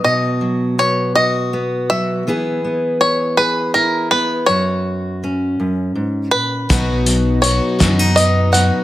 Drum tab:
HH |------|------|------|xxxxxx|
SD |------|------|------|---o--|
BD |------|------|------|o--o--|